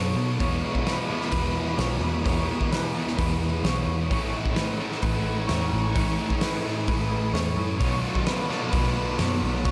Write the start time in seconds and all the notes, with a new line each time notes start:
Already playing: F#2 B2 D#3 F#3 A3 B3 D#4 F#4 A4 C#5 C#6 D#6
0.15 B2 F#3 B3
0.38 E2 B2 E3 G#3 B3 E4 G#4 C#5 E5 B5, kick, open hi-hat
0.62 B2 E3
0.75 kick
0.85 E2 B2 E3 B4, snare, open hi-hat
1.09 B2 E3 G#3 B3 E4 A4
1.21 snare
1.31 E2 B2 E3 B4, kick, open hi-hat
1.56 B2 E3
1.78 B1 E2 B2 E3 C#5, snare, open hi-hat
2.00 E2 E3
2.05 B2
2.24 E2 B2 E3 G#3 B3 E4 C#5, kick, open hi-hat
2.29 E3
2.49 B2 E3
2.61 kick
2.71 E2 B2 E3 B4, snare, open hi-hat
2.94 B2 E3 G#3 B3 E4 A4
3.07 snare
3.17 E2 B2 E3 B4, kick, open hi-hat
3.40 B2 E3
3.63 B1 E2 B2 E3 C#5, snare, open hi-hat
3.86 E2 B2 E3
4.10 A1 A2 E3 A3 C#4 E4 A4 C#5 G#5 C#6 E6, kick, open hi-hat
4.34 E3 A3
4.46 kick
4.56 A2 E3 A3 B4, snare, open hi-hat
4.79 E3 A3 C#4 E4 A4
4.83 A2 E3
4.92 snare
5.02 A1 A2 E3 A3 B4, kick, open hi-hat
5.26 E3 A3
5.47 E2 A2 E3 C#5, snare, open hi-hat
5.52 A3
5.73 A1 E3 A3
5.95 A1 A2 E3 A3 C#4 E4 C#5 D#6, kick, open hi-hat
6.19 E3 A3
6.30 kick
6.41 A2 E3 A3 B4, snare, open hi-hat
6.64 A2 E3 A3 C#4 E4 A4
6.88 A1 A2 E3 A3 B4, kick, open hi-hat
7.10 E3 A3
7.34 E2 A2 E3 A3 C#5, snare, open hi-hat
7.56 F#2 E3 A3
7.79 B1 B2 D#3 F#3 B3 D#4 C#5 F#5, kick, open hi-hat
7.83 A3 F#4 B5 E6
8.04 F#3 B3
8.15 kick
8.26 B2 F#3 B3 B4, snare, open hi-hat
8.49 B2 D#3 F#3 B3 D#4 A4, snare
8.71 B1 B2 F#3 B4, kick, open hi-hat
8.76 B3
8.96 F#3 B3
9.18 F#2 B2 F#3 B3 C#5, snare, open hi-hat
9.42 B1 F#3 B3
9.64 B1 B2 D#3 F#3 B3 D#4 C#5 C#6, kick, open hi-hat
9.68 B3